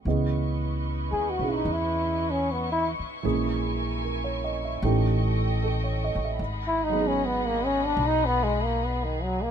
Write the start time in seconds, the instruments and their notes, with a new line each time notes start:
0.05 upright bass C#2, grand piano E3 B3 C#4 G#4 D#5, string section E4 B4 D#5 C#6
1.12 upright bass D#2, trombone G#4
1.30 trombone F#4
1.39 upright bass B1, grand piano C#4 E4 G#4
1.53 trombone D#4
1.65 upright bass E2
1.73 trombone E4
2.31 trombone C#4
2.52 trombone B3
2.72 trombone E4
2.99 muted upright bass stroke
3.23 upright bass A#1, grand piano E3 G#3 A#3 C#4 G#4, string section A#4 G#5
4.04 grand piano A#4
4.24 grand piano C#5
4.44 grand piano D#5
4.65 grand piano E5
4.81 upright bass A1, grand piano E3 A3 C#4 D#4, string section A4 D#5 G5
4.85 grand piano G4
5.64 grand piano A4
5.84 grand piano C#5
6.04 grand piano D#5
6.15 upright bass A1
6.25 grand piano E5
6.39 upright bass G#1, string section G#4 D#5 F#5 B5
6.67 trombone E4
6.84 trombone D#4
6.90 grand piano F#3 G#3
6.94 grand piano B3 D#4
7.00 grand piano G#4
7.07 trombone C#4
7.26 trombone B3
7.47 trombone A#3
7.65 trombone C#4
7.85 trombone D4
7.97 upright bass B1
8.07 trombone D#4
8.26 trombone B3
8.43 trombone G#3
8.64 trombone A#3
8.86 trombone B3
9.05 trombone D#3
9.23 trombone F#3
9.43 trombone A#3